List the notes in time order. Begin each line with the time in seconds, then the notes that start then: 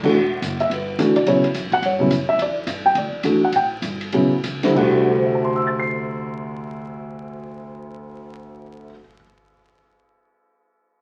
Already playing: E2
0.03 E3 A3 D4 F#4, kick, crash
0.14 E1
0.42 F#1, hi-hat pedal, ride
0.60 E5, ride
0.70 G1 B4, ride
0.99 D2 E3 A3 D4 F#4, hi-hat pedal, ride
1.16 D5, ride
1.26 E2 C#3 F#3 B3 E4 C#5, ride
1.44 ride
1.54 F#2, hi-hat pedal, ride
1.71 F#5, muted upright bass stroke, kick, ride
1.82 G2 C#5, ride
1.99 C#3 F#3 B3 E4
2.11 F#2, hi-hat pedal, ride
2.29 E5
2.38 E2 D5, ride
2.67 G2, hi-hat pedal, ride
2.86 G5
2.95 D2 D5, ride
3.12 muted upright bass stroke
3.23 E2 E3 A3 D4 F#4, hi-hat pedal, ride
3.45 F#5
3.52 A1 G5, ride
3.82 G1, hi-hat pedal, ride
4.01 ride
4.12 A1 C#3 F#3 B3 E4, ride
4.44 C#2, hi-hat pedal, ride
4.63 D3 G3 C4 E4, snare, ride
4.75 D2 C3 E4 F#4 F#5, kick, crash
5.10 A4
5.18 C5
5.26 E5
5.35 A5
5.45 C6
5.56 E6
5.67 A6
5.79 C7